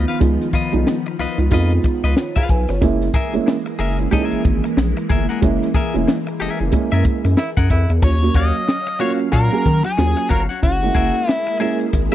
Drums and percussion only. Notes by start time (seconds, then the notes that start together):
0.08 snare, closed hi-hat
0.21 kick, closed hi-hat
0.41 snare, closed hi-hat
0.53 kick, closed hi-hat
0.73 closed hi-hat
0.87 snare
1.06 closed hi-hat
1.19 open hi-hat
1.38 closed hi-hat
1.51 kick, closed hi-hat
1.70 closed hi-hat
1.83 kick, closed hi-hat
2.05 closed hi-hat
2.17 snare
2.36 kick, closed hi-hat
2.49 kick, closed hi-hat
2.68 snare, closed hi-hat
2.82 kick, closed hi-hat
3.02 snare, closed hi-hat
3.14 kick, closed hi-hat
3.34 closed hi-hat
3.48 snare
3.67 closed hi-hat
3.80 open hi-hat
3.99 closed hi-hat
4.12 kick, closed hi-hat
4.31 closed hi-hat
4.44 kick, closed hi-hat
4.66 closed hi-hat
4.77 snare
4.97 closed hi-hat
5.10 kick, closed hi-hat
5.29 snare, closed hi-hat
5.42 kick, closed hi-hat
5.63 snare, closed hi-hat
5.74 kick, closed hi-hat
5.94 closed hi-hat
6.08 snare
6.27 closed hi-hat
6.41 open hi-hat
6.59 closed hi-hat
6.72 kick, closed hi-hat
6.91 closed hi-hat
7.04 kick, closed hi-hat
7.25 closed hi-hat
7.37 snare
7.57 kick, closed hi-hat
7.70 kick, closed hi-hat
7.89 closed hi-hat
8.02 kick, crash
8.23 snare, closed hi-hat
8.34 kick, closed hi-hat
8.54 closed hi-hat
8.69 snare
8.87 closed hi-hat
9.01 open hi-hat
9.20 closed hi-hat
9.33 kick, closed hi-hat
9.52 closed hi-hat
9.65 kick, closed hi-hat
9.87 closed hi-hat
9.98 snare
10.18 closed hi-hat
10.30 kick, closed hi-hat
10.50 snare, closed hi-hat
10.63 kick, closed hi-hat
10.83 snare, closed hi-hat
10.95 kick, closed hi-hat
11.15 closed hi-hat
11.29 snare
11.48 closed hi-hat
11.61 open hi-hat
11.80 closed hi-hat
11.93 kick, closed hi-hat